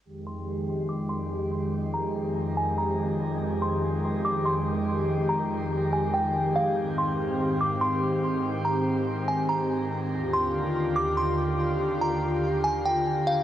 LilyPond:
<<
  \new Staff \with { instrumentName = "Synth bell" } { \time 4/4 \key f \dorian \tempo 4 = 143 r8 c'''8 r4 d'''8 c'''8 r4 | r8 bes''8 r4 aes''8 bes''8 r4 | r8 c'''8 r4 d'''8 c'''8 r4 | r8 bes''8 r4 aes''8 g''4 f''8 |
r8 c'''8 r4 d'''8 c'''8 r4 | r8 bes''8 r4 aes''8 bes''8 r4 | r8 c'''8 r4 d'''8 c'''8 r4 | r8 bes''8 r4 aes''8 g''4 f''8 | }
  \new Staff \with { instrumentName = "Analog synth pad" } { \clef bass \time 4/4 \key f \dorian << { <ees g'>1~ | <ees g'>1~ | <ees g'>1~ | <ees g'>1~ |
<ees g'>1~ | <ees g'>1 | <d g'>1~ | <d g'>1 | } \\ { <f, aes>1~ | <f, aes>1~ | <f, aes>1~ | <f, aes>1 |
<aes, c'>1~ | <aes, c'>1 | <ees, f'>1~ | <ees, f'>1 | } >> }
>>